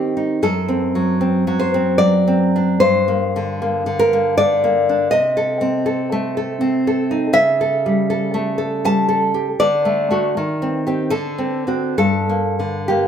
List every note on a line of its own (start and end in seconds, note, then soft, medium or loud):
0.00 0.40 D#3 soft
0.00 0.43 C4 soft
0.00 0.16 D#4 soft
0.00 0.40 G4 medium
0.17 0.43 D#4 soft
0.43 2.77 F#2 soft
0.43 1.59 A4 medium
0.69 1.20 C4 soft
0.95 1.46 F#3 soft
1.21 1.73 C4 soft
1.47 1.98 F#3 soft
1.59 1.98 C5 medium
1.74 2.26 C4 soft
1.98 2.80 F#3 soft
1.98 2.76 D5 medium
2.28 2.81 C4 soft
2.56 2.82 D4 soft
2.80 5.08 G2 soft
2.80 3.95 C5 medium
3.08 3.61 A#3 soft
3.36 3.85 D3 soft
3.62 4.12 A#3 soft
3.86 4.37 D3 soft
3.99 4.37 A#4 medium
4.13 4.63 A#3 soft
4.38 5.12 D3 soft
4.38 5.09 D5 medium
4.64 5.12 A#3 soft
4.89 5.13 D4 soft
5.11 7.32 C3 soft
5.11 7.31 D#5 medium
5.37 5.85 A4 soft
5.61 6.60 C4 soft
5.86 6.36 A4 soft
6.12 7.24 A3 soft
6.37 6.86 A4 soft
6.61 7.36 C4 soft
6.87 7.36 A4 soft
7.11 7.36 D#4 soft
7.33 9.54 C#3 soft
7.33 8.78 E5 medium
7.61 8.09 A4 soft
7.86 8.84 G3 soft
8.10 8.57 A4 soft
8.34 9.46 A3 soft
8.58 9.07 A4 soft
8.85 9.34 G3 soft
8.85 9.20 A5 medium
9.09 9.60 A4 soft
9.34 9.60 G4 soft
9.60 10.35 D3 soft
9.60 11.09 D5 medium
9.85 10.09 A3 soft
10.11 10.34 A3 soft
10.11 10.34 F#4 soft
10.37 11.11 D#3 soft
10.62 10.86 C4 soft
10.87 11.11 C4 soft
10.87 11.10 G4 soft
11.10 11.95 D3 medium
11.10 11.94 A4 medium
11.38 11.66 C4 soft
11.67 11.95 C4 soft
11.67 11.95 F#4 soft
11.98 13.08 G2 soft
11.98 12.85 A4 medium
12.29 12.88 A#3 soft
12.60 13.08 D3 soft
12.88 13.08 A#3 soft
12.88 13.08 G4 soft